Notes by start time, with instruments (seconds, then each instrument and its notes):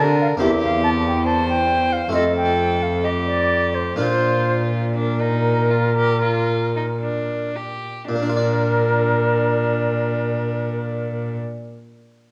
Already playing: cello D3, harpsichord D#4 G4, violin A#4
0.00 harpsichord D3
0.21 flute F5
0.37 cello E2, harpsichord A#3 C4 G4, violin G4
0.41 harpsichord E2, flute E5
0.64 flute F5
0.83 flute A5
1.07 flute G5
1.26 violin C5, flute A5
1.49 flute G5
1.93 flute F5
2.09 cello F2, harpsichord A3 C4 F4
2.14 harpsichord F2, violin A4, flute D#5
2.37 flute G5
2.83 flute F5
3.03 violin G4, flute D#5
3.26 flute D5
3.75 flute C5
3.96 cello A#2, harpsichord A#3 D4 F4, violin F4, flute C5
4.01 harpsichord A#2
4.95 violin D4, flute A#4
5.21 violin D#4
5.71 violin F4
5.97 violin G4
6.22 violin F4
6.76 violin D#4
7.01 violin D4
7.56 violin G4
8.08 harpsichord A#2, cello A#2, violin D4, flute A#4
8.15 harpsichord A#3
8.23 harpsichord D4
8.29 harpsichord F4
8.37 harpsichord D5